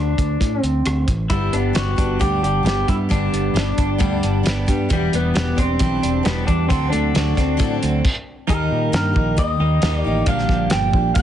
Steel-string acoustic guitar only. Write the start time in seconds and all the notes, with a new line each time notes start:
1.30 G2 D3 G3 B3 D4 G4
1.73 G3 B3 D4 G4
1.96 G3 B3 D4 G4
2.19 G2 D3 G3 B3 D4 G4
2.63 G3 B3 D4 G4
3.09 G2 D3 G3 B3 D4 G4
3.54 G3 B3 D4 G4
3.98 G2 D3 G3 B3 D4 G4
4.43 G3 B3 D4 G4
4.67 G3 B3 D4 G4
4.89 E3 G3 B3 D4 G4
5.34 G3 B3 D4 G4
5.56 B3 D4 G4
5.80 E3 G3 D4 G4
6.23 G3 B3 D4 G4
6.70 D3 F#3 C4 D4 A4
7.14 F#3 C4 D4 A4
7.35 C4 D4 A4
7.57 D3 F#3 C4 D4 A4
8.47 D#3 G3 A#3 D#4 G4
8.92 G3 A#3 D#4 G4
9.13 A#3 D#4 G4
9.37 D#3 G3 A#3 D#4 G4
9.82 G3 A#3 D#4 G4
10.04 A#3 D#4 G4
10.27 A#2 D3 F3 A#3 D4 G4
10.72 F3 A#3 D4 G4
10.94 F3 A#3 D4 G4
11.16 A#2 D3 F3 A#3 D4 G4